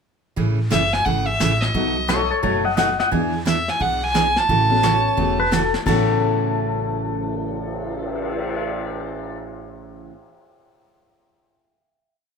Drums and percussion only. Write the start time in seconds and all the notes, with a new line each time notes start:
0.37 brush sweep, kick
0.72 snare, hi-hat pedal
0.93 snare
1.06 brush sweep, kick
1.40 snare, hi-hat pedal
1.62 snare
1.75 brush sweep, kick
2.09 snare, hi-hat pedal
2.43 brush sweep, kick
2.78 snare, hi-hat pedal
3.00 snare
3.12 brush sweep, kick
3.47 snare, hi-hat pedal
3.68 snare
3.81 brush sweep, kick
4.15 snare, hi-hat pedal
4.36 snare
4.49 brush sweep, kick
4.83 snare, hi-hat pedal
5.18 brush sweep, kick
5.52 snare, hi-hat pedal
5.74 snare
5.86 kick, crash
6.08 cymbal swell